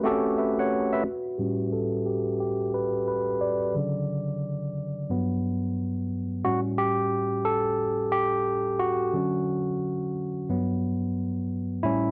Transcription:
Already playing: A3 C#4 F#4 G4 A#4 B4
0.03 A3 C4 F#4 G4 A4
0.11 C#4
0.38 B4 E5
0.59 C#5 F#5
0.93 B4 E5
1.05 F#4
1.38 A2 G3 C#4 G4
1.72 A4
2.06 G4
2.40 G4
2.74 B4
3.08 B4
3.41 D5
3.75 C#3 D3 F#3
5.10 G2 F#3 B3
6.44 A2 G3 C#4 F#4
6.78 G4
7.45 A4
8.12 G4
8.79 F#4
9.13 D3 F#3 C#4
10.49 G2 F#3 B3
11.83 A2 G3 C#4 E4

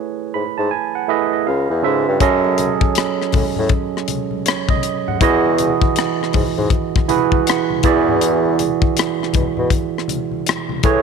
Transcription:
Already playing: A3 E4 G#4 B4 C#5
0.34 G#2 B5
0.58 G#2 A5
0.71 G#5
0.95 F#5
1.08 A3 E4 G#4 B4 D#5 E5
1.33 D#5
1.47 C#2 F5
1.70 E2
1.82 G#2 C#3 C#4 F4 A4 B4 E5
2.08 G2
2.20 F#2 F#3 C#4 G#4 A4 D#5, kick, closed hi-hat
2.44 muted conga
2.58 closed hi-hat, high conga
2.81 kick
2.95 cross-stick, closed hi-hat
3.22 cross-stick
3.32 A2, kick, open hi-hat, high conga, low conga
3.56 A2, low conga
3.69 kick, closed hi-hat
3.97 cross-stick
4.08 closed hi-hat, high conga
4.31 high conga
4.46 C#5, cross-stick, closed hi-hat, muted conga
4.69 D#5, kick, muted conga, high conga
4.83 closed hi-hat
5.08 F#5, low conga
5.21 E2 E3 E4 F#4 G#4 D#5, kick, closed hi-hat
5.45 muted conga
5.58 closed hi-hat, high conga
5.82 kick
5.96 cross-stick, closed hi-hat, muted conga
6.21 cross-stick, muted conga
6.33 G#2, kick, open hi-hat, high conga, low conga
6.58 G#2, low conga
6.70 kick, closed hi-hat
6.96 kick, cross-stick, muted conga
7.08 E3 E4 F#4 G#4 B4 B5, closed hi-hat, high conga
7.32 kick, high conga
7.47 F#5, cross-stick, closed hi-hat, muted conga
7.70 high conga
7.83 E2 E3 E4 F#4 G#4 D5 E5, kick, closed hi-hat
8.08 low conga
8.21 closed hi-hat
8.45 muted conga
8.59 closed hi-hat, high conga
8.82 kick
8.97 cross-stick, closed hi-hat, muted conga
9.20 cross-stick, muted conga
9.33 B2, kick, closed hi-hat, high conga, low conga
9.57 B2, low conga
9.70 kick, closed hi-hat, muted conga
9.98 cross-stick
10.08 closed hi-hat, high conga
10.31 high conga
10.47 cross-stick, closed hi-hat
10.69 muted conga, high conga
10.83 A2 A3 E4 G#4 B4 C#5, kick, closed hi-hat

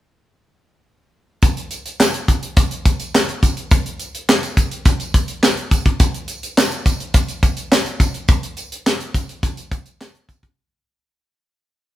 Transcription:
1.42 kick, closed hi-hat, tambourine
1.57 closed hi-hat
1.71 closed hi-hat, tambourine
1.86 closed hi-hat, tambourine
2.00 snare, clap, tambourine
2.14 closed hi-hat, tambourine
2.28 kick, closed hi-hat, tambourine
2.43 closed hi-hat
2.57 kick, closed hi-hat, tambourine
2.71 closed hi-hat
2.85 kick, closed hi-hat, tambourine
3.00 closed hi-hat, tambourine
3.15 snare, clap, tambourine
3.29 closed hi-hat
3.43 kick, closed hi-hat, tambourine
3.57 closed hi-hat
3.71 kick, closed hi-hat, tambourine
3.86 closed hi-hat
4.00 closed hi-hat, tambourine
4.15 closed hi-hat
4.29 snare, clap, tambourine
4.43 closed hi-hat, tambourine
4.57 kick, closed hi-hat, tambourine
4.71 closed hi-hat
4.85 kick, closed hi-hat, tambourine
5.00 closed hi-hat, tambourine
5.14 kick, closed hi-hat, tambourine
5.28 closed hi-hat
5.43 snare, clap, tambourine
5.57 closed hi-hat
5.71 kick, closed hi-hat, tambourine
5.86 kick, closed hi-hat
6.00 kick, closed hi-hat, tambourine
6.14 closed hi-hat
6.28 closed hi-hat, tambourine
6.43 closed hi-hat, tambourine
6.58 snare, clap, tambourine
6.72 closed hi-hat, tambourine
6.86 kick, closed hi-hat, tambourine
7.00 closed hi-hat
7.14 kick, closed hi-hat, tambourine
7.28 closed hi-hat, tambourine
7.43 kick, closed hi-hat, tambourine
7.57 closed hi-hat, tambourine
7.72 snare, clap, tambourine
7.86 closed hi-hat
8.00 kick, closed hi-hat, tambourine
8.14 closed hi-hat
8.28 kick, closed hi-hat, tambourine
8.43 closed hi-hat
8.57 closed hi-hat, tambourine
8.72 closed hi-hat
8.87 snare, clap, tambourine
9.00 closed hi-hat
9.14 kick, closed hi-hat, tambourine
9.29 closed hi-hat
9.43 kick, closed hi-hat, tambourine
9.57 closed hi-hat, tambourine
9.71 kick, closed hi-hat, tambourine
9.86 closed hi-hat, tambourine
10.01 snare, clap, tambourine
10.15 closed hi-hat
10.29 kick, closed hi-hat, tambourine
10.43 kick, closed hi-hat

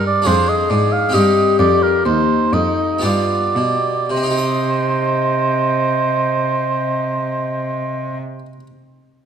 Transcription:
Already playing: G2 G#4
0.07 D5
0.22 D4 F4 G#4
0.26 F2 G#4 C5
0.48 D#5
0.69 G#2 D5
0.92 F5
1.09 C4 D#4 G4
1.13 G2 G4 D#5
1.59 F2 D5
1.83 A#4
2.05 D#2 D#4 C5
2.53 F2 D#5
2.99 B3 F4 G4
3.03 G2 F4 D5
3.56 B2
4.10 C3 C5 D#5
4.16 C4
4.23 D#4
4.30 G4
4.37 D#5

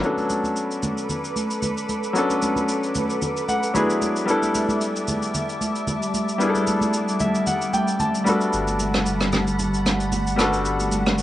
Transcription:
0.01 F#3 B3 C#4 D4 A4 B4 B5 D6, shaker
0.06 A4
0.17 high conga, shaker
0.30 high conga, shaker
0.44 high conga, shaker
0.56 shaker
0.71 shaker
0.83 high conga, low conga, shaker
0.98 shaker
1.09 low conga, shaker
1.24 shaker
1.36 high conga, shaker
1.50 shaker
1.62 high conga, low conga, shaker
1.77 shaker
1.89 high conga, shaker
2.04 shaker
2.13 F#3 B3 C#4 D4, shaker
2.18 A4
2.30 high conga, shaker
2.42 high conga, shaker
2.56 high conga, shaker
2.69 shaker
2.83 shaker
2.95 high conga, low conga, shaker
3.10 shaker
3.22 low conga, shaker
3.37 shaker
3.48 F#5, high conga, shaker
3.63 shaker
3.74 F#3 B3 D4 E4 G#4 E5 B5, high conga, low conga, shaker
3.90 shaker
4.02 high conga, shaker
4.16 shaker
4.26 G3 B3 D4 E4 A5, shaker
4.31 A4
4.42 high conga, shaker
4.55 high conga, shaker
4.69 high conga, shaker
4.81 shaker
4.96 shaker
5.08 high conga, low conga, shaker
5.22 shaker
5.34 low conga, shaker
5.49 shaker
5.61 high conga, shaker
5.75 shaker
5.87 high conga, low conga, shaker
6.02 shaker
6.14 high conga, shaker
6.28 shaker
6.38 G3 B3 D4 E4, shaker
6.43 G#4
6.49 A4
6.55 high conga, shaker
6.67 high conga, shaker
6.81 high conga, shaker
6.93 shaker
7.08 shaker
7.20 E5, high conga, low conga, shaker
7.35 shaker
7.47 F#5, low conga, shaker
7.61 shaker
7.73 G5, high conga, shaker
7.88 shaker
8.00 A5, high conga, low conga, shaker
8.15 shaker
8.24 G3 B3 D4 F#4 F#5 B5, high conga, shaker
8.29 A4
8.41 shaker
8.53 G1, shaker
8.67 high conga, shaker
8.80 high conga, shaker
8.94 cross-stick, high conga, shaker
9.06 shaker
9.21 cross-stick, shaker
9.32 cross-stick, high conga, low conga, shaker
9.47 shaker
9.59 low conga, shaker
9.74 shaker
9.86 cross-stick, high conga, shaker
10.00 shaker
10.12 high conga, low conga, shaker
10.27 shaker
10.36 G3 B3 D4 F#4, cross-stick, high conga, shaker
10.41 A4
10.53 shaker
10.65 shaker
10.80 high conga, shaker
10.92 high conga, shaker
11.06 cross-stick, high conga, shaker
11.18 shaker

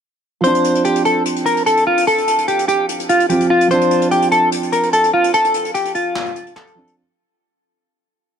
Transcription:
0.41 F3 C4 C5, closed hi-hat
0.46 D4
0.55 closed hi-hat
0.64 closed hi-hat
0.75 closed hi-hat
0.85 G4, closed hi-hat
0.96 closed hi-hat
1.05 A4, closed hi-hat
1.26 closed hi-hat
1.36 closed hi-hat
1.46 A#4, closed hi-hat
1.57 closed hi-hat
1.66 A4, closed hi-hat
1.77 closed hi-hat
1.87 F4
1.98 closed hi-hat
2.07 A4, closed hi-hat
2.18 closed hi-hat
2.28 closed hi-hat
2.38 closed hi-hat
2.48 G4, closed hi-hat
2.59 closed hi-hat
2.68 G4, closed hi-hat
2.89 closed hi-hat
3.00 closed hi-hat
3.09 F4, closed hi-hat
3.20 closed hi-hat
3.29 F3 C4 F4 G4, closed hi-hat
3.40 closed hi-hat
3.50 F4
3.61 closed hi-hat
3.68 F3 C4 C5, closed hi-hat
3.73 D4
3.81 closed hi-hat
3.91 closed hi-hat
4.02 closed hi-hat
4.11 G4, closed hi-hat
4.22 closed hi-hat
4.32 A4, closed hi-hat
4.52 closed hi-hat
4.63 closed hi-hat
4.72 A#4, closed hi-hat
4.83 closed hi-hat
4.93 A4, closed hi-hat
5.04 closed hi-hat
5.13 F4
5.24 closed hi-hat
5.34 A4, closed hi-hat
5.44 closed hi-hat
5.54 closed hi-hat
5.65 closed hi-hat
5.74 G4, closed hi-hat
5.85 closed hi-hat
5.95 F4, closed hi-hat
6.15 snare, clap
6.26 closed hi-hat
6.36 closed hi-hat
6.47 closed hi-hat
6.56 A4, snare, clap
6.67 closed hi-hat
6.75 F3 C4 D4
6.87 closed hi-hat

